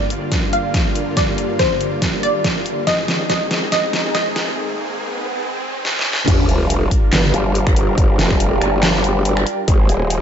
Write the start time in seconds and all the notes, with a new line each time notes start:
Already playing: G2 D3 A#3 F4 G4 C5 D5 G5, riser
0.10 closed hi-hat
0.32 kick, snare, closed hi-hat
0.53 F5, closed hi-hat
0.74 kick, snare, closed hi-hat
0.96 closed hi-hat
1.17 D5, kick, snare, closed hi-hat
1.38 closed hi-hat
1.59 C5, kick, snare, closed hi-hat
1.81 closed hi-hat
2.02 kick, snare, closed hi-hat
2.23 D5, closed hi-hat
2.44 kick, snare, closed hi-hat
2.66 closed hi-hat
2.87 G#2 D#3 C4 G#4 D#5, kick, snare, closed hi-hat
3.04 D#5, snare, closed hi-hat
3.30 D#5, kick, snare, closed hi-hat
3.43 A#5
3.51 snare, closed hi-hat
3.72 D#5, kick, snare, closed hi-hat
3.93 snare, closed hi-hat
4.15 D#5, kick, snare, closed hi-hat
4.36 snare, closed hi-hat
5.85 snare
5.99 snare
6.13 snare
6.27 G1 G3 D4 F4 G4 A#4, kick, closed hi-hat, crash, sub drop
6.49 F1, closed hi-hat
6.66 D5
6.70 closed hi-hat
6.91 kick, closed hi-hat
7.13 G1, snare, clap, closed hi-hat
7.29 G5
7.34 G1, closed hi-hat
7.55 closed hi-hat
7.67 finger snap, kick
7.76 closed hi-hat
7.98 G1, kick, closed hi-hat
8.19 F1, snare, closed hi-hat
8.31 finger snap, kick
8.40 closed hi-hat
8.62 G1, finger snap, closed hi-hat
8.83 snare, clap, closed hi-hat
9.04 closed hi-hat
9.25 closed hi-hat
9.37 finger snap
9.47 closed hi-hat
9.68 G#1 G#3 G#4 C5 D#5, kick, closed hi-hat
9.89 D#1, closed hi-hat
10.10 closed hi-hat